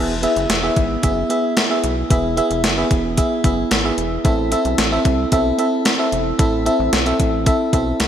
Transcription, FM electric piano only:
Already playing: B3 E4 G#4 E5
0.22 B3 E4 G#4 E5
0.62 B3 E4 G#4 E5
1.03 B3 E4 G#4 E5
1.29 B3 E4 G#4 E5
1.70 B3 E4 G#4 E5
2.10 B3 E4 G#4 E5
2.37 B3 E4 G#4 E5
2.77 B3 E4 G#4 E5
3.17 B3 E4 G#4 E5
3.44 B3 E4 G#4 E5
3.84 B3 E4 G#4 E5
4.24 C4 E4 A4 E5
4.51 C4 E4 A4 E5
4.91 C4 E4 A4 E5
5.32 C4 E4 A4 E5
5.58 C4 E4 A4 E5
5.98 C4 E4 A4 E5
6.39 C4 E4 A4 E5
6.66 C4 E4 A4 E5
7.06 C4 E4 A4 E5
7.46 C4 E4 A4 E5
7.73 C4 E4 A4 E5

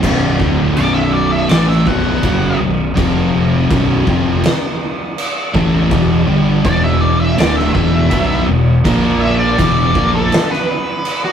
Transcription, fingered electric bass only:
0.03 B0
0.40 D1
0.77 B0
1.50 A1
1.86 B0
2.23 F#1
2.59 B0
2.97 F1
3.70 B0
4.07 F1
5.54 A1
5.91 E1
6.27 G1
6.65 E1
7.38 D1
7.75 E1
8.11 B1
8.48 E1
8.85 A#1
9.59 E1
9.95 A#1

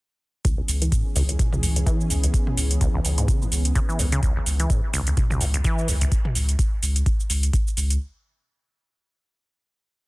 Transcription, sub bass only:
0.68 C#2
1.16 C#2
1.63 C#2
2.10 C#2
2.57 C#2
3.05 C#2
3.52 C#2
3.99 C#2
4.46 C#2
4.93 C#2
5.41 C#2
5.88 C#2
6.35 C#2
6.82 C#2
7.30 C#2
7.77 C#2

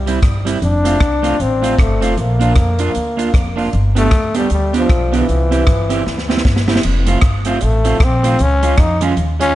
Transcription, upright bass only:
Already playing: C2
0.23 G1
0.62 F1
1.01 C2
1.40 A1
1.79 G1
2.02 F1
2.17 A#1
2.56 F2
2.96 D2
3.34 F1
3.73 G1
4.12 D2
4.51 D2
4.90 B1
5.29 C2
5.67 G1
6.07 D2
6.45 G1
6.84 F1
7.22 G1
7.62 A1
8.00 A#1
8.40 C#2
8.78 F2
9.17 D#2

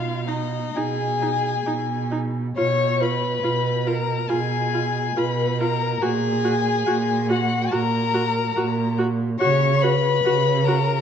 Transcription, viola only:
0.28 D#4
0.77 D#4
1.22 D#4
1.66 D#4
2.12 D#4
2.57 F4
3.01 F4
3.43 F4
3.86 F4
4.29 F4
4.74 F4
5.17 F4
5.60 F4
6.02 F#4
6.44 F#4
6.87 F#4
7.29 F#4
7.72 F#4
8.14 F#4
8.56 F#4
8.98 F#4
9.40 F#4
9.84 F#4
10.25 F#4
10.67 F#4

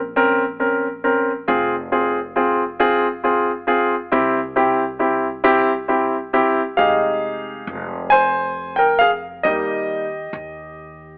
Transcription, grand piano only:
0.16 C4 C#4 A#4
0.60 C4 C#4 A#4
1.04 C4 C#4 A#4
1.48 C4 F4 G#4
1.92 C4 F4 G#4
2.36 C4 F4 G#4
2.80 C4 F4 G#4
3.24 C4 F4 G#4
3.67 C4 F4 G#4
4.12 C4 E4 G4
4.56 C4 E4 G4
4.99 C4 E4 G4
5.44 C4 E4 G4
5.88 C4 E4 G4
6.33 C4 E4 G4
6.77 G#3 D#4 G4 G#4 F5
8.10 C5 G#5
8.76 A#4 G5
8.99 G#4 F5
9.43 G3 A#3 D#4 G4 D#5

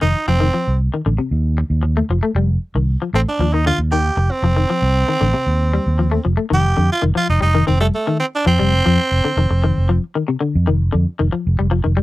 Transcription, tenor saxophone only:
0.02 D#4
0.28 C4
3.15 C4
3.28 D4
3.53 D#4
3.67 F4
3.92 G4
4.31 C4
6.54 G4
6.92 F4
7.17 F4
7.30 D#4
7.42 D#4
7.67 C4
7.80 A3
7.95 A3
8.20 C4
8.35 D4
8.47 C4

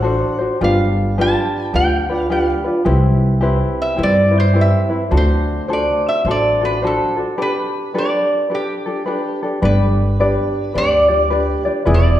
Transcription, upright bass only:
Already playing: A1
0.61 G1
1.74 D2
2.86 C2
3.99 G2
5.11 D2
6.25 A1
9.63 G1
10.75 D2
11.87 E1

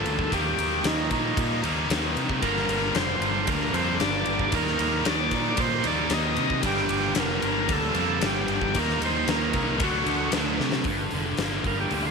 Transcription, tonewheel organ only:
Already playing: A4
0.34 G4
0.86 D#4
1.13 D#4
2.42 A#4
2.95 C5
3.48 A#4
3.73 C5
4.00 D5
4.55 A#4
5.07 D5
5.60 C5
5.87 D5
6.14 D#5
6.66 G4
7.20 A#4
7.72 A4
8.26 G4
8.78 A#4
9.05 C5
9.30 A#4
9.84 F#4
11.67 A#4
11.80 G4
12.02 E4
12.07 F4

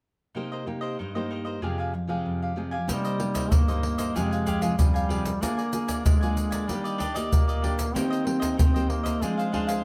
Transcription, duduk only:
2.89 G3
3.52 A#3
4.17 G#3
4.78 G3
5.42 A#3
6.05 G#3
6.69 G3
7.32 A#3
7.95 C4
8.59 C4
8.90 A#3
9.23 G#3

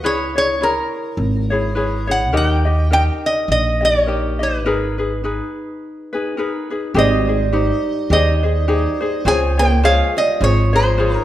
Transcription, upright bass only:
0.03 C#2
1.17 G#1
2.33 D#2
3.48 A#1
4.63 G#1
6.94 G#1
8.10 D#2
9.25 C#2
10.41 G#1

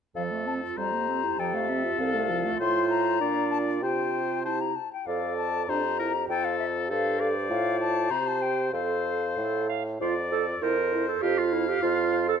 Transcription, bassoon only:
0.16 F2
0.78 F2
1.38 F2
1.99 C2
2.60 A2
3.21 A#2
3.83 C3
5.07 F2
5.68 F2
6.29 F2
6.90 G2
7.50 A2
8.11 C3
8.73 F2
9.37 A2
10.01 F2
10.62 F2
11.23 F2
11.83 F2

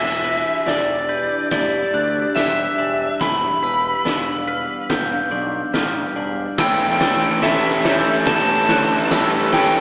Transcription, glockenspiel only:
Already playing: E6
1.09 G6
1.94 F#6
2.36 E6
3.64 E6
4.48 F6
4.90 G6
5.74 F6
6.58 E6
7.85 G6
8.69 F#6
9.11 E6

